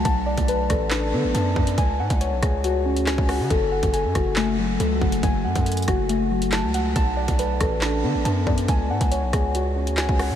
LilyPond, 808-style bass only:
\new Staff \with { instrumentName = "808-style bass" } { \clef bass \time 4/4 \key fis \minor \tempo 4 = 139 b,,8. b,,8. a,,4 d16 a,,16 fis,8 fis,8 | cis,8 gis,16 cis,8 b,,16 cis,4~ cis,16 d,16 cis,16 cis,8 cis16 | fis,,8. fis,,8 fis,16 fis,,4. cis,8 fis,,8 | fis,,8 fis,16 fis,8. fis,,4.~ fis,,16 cis,8. |
b,,8. b,,8. a,,4 d16 a,,16 fis,8 fis,8 | cis,8 gis,16 cis,8 b,,16 cis,4~ cis,16 d,16 cis,16 cis,8 cis16 | }